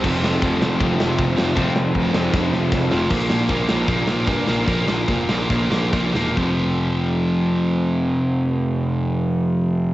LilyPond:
<<
  \new Staff \with { instrumentName = "Distorted electric guitar" } { \time 4/4 \key f \major \tempo 4 = 149 <f a c' f'>1 | <f a c' f'>1 | r1 | r1 |
r1 | r1 | }
  \new Staff \with { instrumentName = "Overdriven electric guitar" } { \clef bass \time 4/4 \key f \major <f, c f>2 <f, c f>2 | <f, c f>2 <f, c f>2 | <bes, f bes>8 <bes, f bes>8 <bes, f bes>8 <bes, f bes>8 <bes, f bes>8 <bes, f bes>8 <bes, f bes>8 <bes, f bes>8 | <bes, f bes>8 <bes, f bes>8 <bes, f bes>8 <bes, f bes>8 <bes, f bes>8 <bes, f bes>8 <bes, f bes>8 <bes, f bes>8 |
<f, c f>1~ | <f, c f>1 | }
  \new Staff \with { instrumentName = "Overdriven electric guitar" } { \clef bass \time 4/4 \key f \major <f, c f>2.~ <f, c f>8 <f, c f>8 | <f, c f>2.~ <f, c f>8 <f, c f>8 | <bes, f bes>8 <bes, f bes>8 <bes, f bes>8 <bes, f bes>8 <bes, f bes>8 <bes, f bes>8 <bes, f bes>8 <bes, f bes>8 | <bes, f bes>8 <bes, f bes>8 <bes, f bes>8 <bes, f bes>8 <bes, f bes>8 <bes, f bes>8 <bes, f bes>8 <bes, f bes>8 |
<f, c f>1~ | <f, c f>1 | }
  \new Staff \with { instrumentName = "Picked electric bass" } { \clef bass \time 4/4 \key f \major f,,4 f,,8 f,,8 f,,8 f,,8 f,,8 f,,8 | f,,4 f,,8 f,,8 f,,8 f,,8 f,,8 f,,8 | bes,,8 bes,,8 bes,,8 bes,,8 bes,,8 bes,,8 g,8 bes,,8 | bes,,8 bes,,8 f,,8 bes,,8 bes,,8 bes,,8 bes,,8 e,,8 |
f,,1~ | f,,1 | }
  \new DrumStaff \with { instrumentName = "Drums" } \drummode { \time 4/4 <cymc bd>8 sn8 <bd cymr>8 sn8 <bd cymr>8 sn8 <bd cymr>8 sn8 | <bd cymr>8 sn8 <bd cymr>8 sn8 <bd sn>8 sn8 <bd sn>8 sn8 | <cymc bd>8 sn8 <hho bd>8 sn8 <hho bd>8 sn8 <hho bd>8 sn8 | <hho bd>8 sn8 <hho bd>8 sn8 <hho bd>8 sn8 <bd sn>8 sn8 |
bd4 r4 r4 r4 | r4 r4 r4 r4 | }
>>